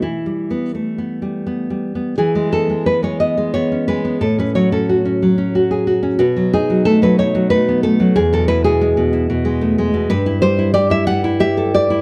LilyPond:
\new Staff \with { instrumentName = "Nylon-string guitar" } { \time 3/4 \key e \minor \tempo 4 = 91 << { e'2~ e'8 r8 | \key e \major gis'8 a'8 b'16 cis''16 dis''8 cis''8 b'8 | a'16 b'16 cis''16 a'4.~ a'16 r8 | fis'8 gis'8 a'16 b'16 cis''8 b'8 a'8 |
gis'16 a'16 b'16 gis'4.~ gis'16 r8 | \key e \minor b'8 c''8 d''16 e''16 fis''8 e''8 d''8 | } \\ { \tuplet 3/2 { e8 g8 b8 a8 b8 g8 b8 g8 b8 } | e16 gis16 b16 gis16 b16 gis16 b16 gis16 b16 cis'16 gis16 b16 | a,16 cis'16 fis16 cis'16 fis'16 cis'16 fis16 cis'16 fis'16 gis'16 fis'16 cis'16 | b,16 fis16 dis'16 fis16 a16 fis16 dis'16 fis16 a16 b16 a16 fis16 |
e,16 b,16 e'16 b,16 gis16 b,16 e'16 b,16 gis16 a16 gis16 b,16 | g,16 e'16 g16 e'16 g'16 e'16 g16 e'16 g'16 a'16 g'16 e'16 | } >> }